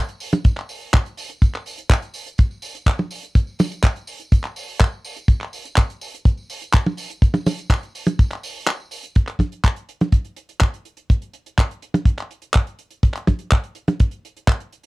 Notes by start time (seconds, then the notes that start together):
0.08 closed hi-hat, tambourine
0.20 open hi-hat, tambourine
0.32 closed hi-hat, high tom, tambourine
0.44 kick, closed hi-hat, tambourine
0.57 clap, tambourine
0.69 open hi-hat, tambourine
0.81 open hi-hat, tambourine
0.93 kick, clap, closed hi-hat, tambourine
1.05 closed hi-hat, tambourine
1.17 open hi-hat, tambourine
1.30 closed hi-hat, tambourine
1.42 kick, closed hi-hat, tambourine
1.54 clap, tambourine
1.66 open hi-hat, tambourine
1.78 closed hi-hat, tambourine
1.90 kick, clap, closed hi-hat, tambourine
2.02 closed hi-hat, tambourine
2.14 open hi-hat, tambourine
2.26 closed hi-hat, tambourine
2.38 kick, closed hi-hat, tambourine
2.51 tambourine
2.62 open hi-hat, tambourine
2.75 closed hi-hat, tambourine
2.86 kick, clap, closed hi-hat, tambourine
2.99 high tom, tambourine
3.11 open hi-hat, tambourine
3.23 closed hi-hat, tambourine
3.35 kick, closed hi-hat, tambourine
3.47 tambourine
3.59 open hi-hat, high tom, tambourine
3.72 closed hi-hat, tambourine
3.84 kick, clap, closed hi-hat, tambourine
3.96 closed hi-hat, tambourine
4.07 open hi-hat, tambourine
4.20 closed hi-hat, tambourine
4.32 kick, closed hi-hat, tambourine
4.44 clap, tambourine
4.56 open hi-hat, tambourine
4.68 open hi-hat, tambourine
4.80 kick, clap, closed hi-hat, tambourine
4.92 tambourine
5.04 open hi-hat, tambourine
5.17 closed hi-hat, tambourine
5.28 kick, closed hi-hat, tambourine
5.41 clap, tambourine
5.53 open hi-hat, tambourine
5.65 closed hi-hat, tambourine
5.76 kick, clap, closed hi-hat, tambourine
5.90 closed hi-hat, tambourine
6.01 open hi-hat, tambourine
6.14 closed hi-hat, tambourine
6.25 kick, closed hi-hat, tambourine
6.37 tambourine
6.50 open hi-hat, tambourine
6.62 closed hi-hat, tambourine
6.73 kick, clap, closed hi-hat, tambourine
6.86 high tom, tambourine
6.97 open hi-hat, tambourine
7.10 closed hi-hat, tambourine
7.22 kick, closed hi-hat, tambourine
7.34 closed hi-hat, high tom, tambourine
7.46 open hi-hat, high tom, tambourine
7.58 closed hi-hat, tambourine
7.70 kick, clap, closed hi-hat, tambourine
7.83 closed hi-hat, tambourine
7.95 open hi-hat, tambourine
8.06 closed hi-hat, high tom, tambourine
8.19 kick, closed hi-hat, tambourine
8.31 clap, closed hi-hat, tambourine
8.43 open hi-hat, tambourine
8.55 open hi-hat, tambourine
8.67 clap, closed hi-hat, tambourine
8.80 tambourine
8.91 open hi-hat, tambourine
9.03 closed hi-hat, tambourine
9.15 kick, closed hi-hat
9.27 clap, closed hi-hat
9.39 kick, closed hi-hat, high tom
9.52 closed hi-hat
9.64 kick, clap, closed hi-hat
9.76 closed hi-hat
9.89 closed hi-hat
10.01 closed hi-hat, high tom
10.12 kick, closed hi-hat
10.25 closed hi-hat
10.36 closed hi-hat
10.49 closed hi-hat
10.60 kick, clap, closed hi-hat
10.74 closed hi-hat
10.85 closed hi-hat
10.97 closed hi-hat
11.10 kick, closed hi-hat
11.22 closed hi-hat
11.33 closed hi-hat
11.46 closed hi-hat
11.58 kick, clap, closed hi-hat
11.71 closed hi-hat
11.82 closed hi-hat
11.94 closed hi-hat, high tom
12.05 kick, closed hi-hat
12.18 clap, closed hi-hat
12.31 closed hi-hat
12.42 closed hi-hat
12.54 kick, clap, closed hi-hat
12.67 closed hi-hat
12.79 closed hi-hat
12.91 closed hi-hat
13.03 kick, closed hi-hat
13.14 clap, closed hi-hat
13.27 kick, closed hi-hat, high tom
13.39 closed hi-hat
13.51 kick, clap, closed hi-hat
13.64 closed hi-hat
13.75 closed hi-hat
13.88 closed hi-hat, high tom
14.00 kick, closed hi-hat
14.11 closed hi-hat
14.25 closed hi-hat
14.37 closed hi-hat
14.48 kick, clap, closed hi-hat
14.60 closed hi-hat
14.73 closed hi-hat